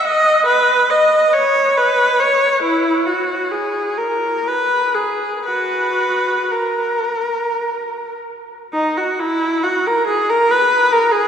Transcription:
0.05 0.47 D#5 medium
0.46 0.88 B4 medium
0.90 1.34 D#5 medium
1.33 1.78 C#5 medium
1.77 2.22 B4 medium
2.19 2.63 C#5 medium
2.62 3.05 E4 medium
3.06 3.51 F#4 medium
3.51 3.98 G#4 medium
3.98 4.47 A#4 medium
4.47 4.96 B4 medium
4.94 5.46 G#4 medium
5.45 6.48 F#4 medium
5.45 6.49 B4 medium
6.51 8.17 A#4 medium
8.73 8.94 D#4 medium
8.97 9.19 F#4 medium
9.19 9.63 E4 medium
9.63 9.85 F#4 medium
9.87 10.08 A#4 medium
10.07 10.28 G#4 medium
10.29 10.50 A#4 medium
10.51 10.92 B4 medium
10.92 11.13 A#4 medium
11.11 11.28 G#4 medium

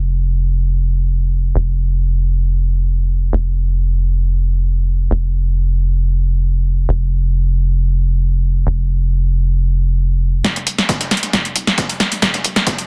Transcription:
0.00 1.53 F1 medium
1.55 3.31 F1 medium
3.33 5.09 F1 medium
5.11 6.87 F1 medium
6.89 8.65 F1 medium
8.67 10.42 F1 medium
10.44 kick loud
10.44 snare soft
10.44 closed hi-hat medium
10.44 tambourine medium
10.56 10.63 F1 loud
10.56 closed hi-hat medium
10.67 10.81 F1 medium
10.67 open hi-hat loud
10.67 tambourine medium
10.78 snare soft
10.78 closed hi-hat medium
10.89 kick loud
10.89 snare loud
10.89 closed hi-hat medium
10.89 tambourine medium
11.01 snare medium
11.01 closed hi-hat medium
11.11 11.25 F1 medium
11.11 snare soft
11.11 open hi-hat medium
11.11 tambourine medium
11.17 closed hi-hat medium
11.23 snare soft
11.23 closed hi-hat medium
11.33 kick loud
11.33 snare soft
11.33 closed hi-hat medium
11.33 tambourine medium
11.45 closed hi-hat medium
11.56 11.70 C2 medium
11.56 open hi-hat loud
11.56 tambourine medium
11.67 snare soft
11.67 closed hi-hat medium
11.78 kick loud
11.78 snare loud
11.78 closed hi-hat medium
11.78 tambourine medium
11.89 closed hi-hat soft
11.89 closed hi-hat medium
12.00 12.14 F1 medium
12.00 snare soft
12.00 snare medium
12.00 open hi-hat medium
12.00 tambourine medium
12.12 closed hi-hat soft
12.12 closed hi-hat medium
12.22 kick loud
12.22 snare medium
12.22 closed hi-hat medium
12.22 tambourine medium
12.34 12.40 F1 loud
12.34 snare soft
12.34 closed hi-hat medium
12.44 12.59 F1 medium
12.44 open hi-hat loud
12.44 tambourine medium
12.56 snare medium
12.56 closed hi-hat medium
12.67 kick loud
12.67 snare loud
12.67 closed hi-hat medium
12.67 tambourine medium
12.79 closed hi-hat medium

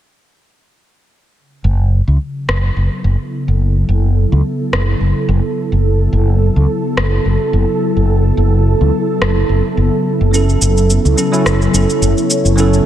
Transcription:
1.36 12.86 C#3 medium
1.62 2.00 F#1 medium
1.62 12.86 F#3 medium
2.08 2.16 C#2 medium
2.22 12.86 E4 medium
2.28 12.86 B3 medium
2.33 11.33 A4 medium
2.48 2.69 F#1 medium
2.48 cross-stick medium
2.76 2.87 F#1 medium
3.04 3.15 F#1 medium
3.48 3.82 F#1 medium
3.89 4.25 F#1 medium
4.32 4.41 C#2 medium
4.73 4.93 F#1 medium
4.73 cross-stick medium
5.01 5.11 F#1 medium
5.29 5.39 F#1 medium
5.72 6.07 F#1 medium
6.13 6.49 F#1 medium
6.56 6.65 C#2 medium
6.97 7.17 F#1 medium
6.97 cross-stick medium
7.25 7.36 F#1 medium
7.53 7.64 F#1 medium
7.97 8.31 F#1 medium
8.37 8.73 F#1 medium
8.81 8.90 C#2 medium
9.21 9.42 F#1 medium
9.21 cross-stick medium
9.49 9.60 F#1 medium
9.77 9.88 F#1 medium
10.21 10.55 F#1 medium
10.31 11.14 F#3 medium
10.31 11.14 C#4 medium
10.31 11.15 E4 medium
10.31 11.16 A4 medium
10.31 shaker soft
10.49 shaker soft
10.61 10.97 F#1 medium
10.61 shaker medium
10.77 shaker soft
10.90 shaker soft
11.05 11.14 C#2 medium
11.05 shaker soft
11.16 11.30 F#3 medium
11.16 11.31 C#4 medium
11.16 11.31 E4 medium
11.16 11.31 A4 medium
11.16 shaker medium
11.30 11.59 F#3 medium
11.30 11.59 C#4 medium
11.30 11.59 E4 medium
11.30 11.60 A4 medium
11.30 12.86 C#5 medium
11.30 shaker soft
11.46 11.66 F#1 medium
11.46 cross-stick medium
11.46 shaker soft
11.62 shaker soft
11.72 11.84 F#1 medium
11.72 12.54 F#3 medium
11.72 12.55 C#4 medium
11.72 12.55 E4 medium
11.72 shaker medium
11.76 12.56 A4 medium
11.90 shaker soft
12.02 12.12 F#1 medium
12.02 shaker soft
12.18 shaker soft
12.30 shaker medium
12.45 12.80 F#1 medium
12.45 shaker soft
12.56 12.86 F#3 medium
12.56 12.86 C#4 medium
12.56 12.86 E4 medium
12.56 shaker soft
12.60 12.86 A4 loud
12.73 shaker soft

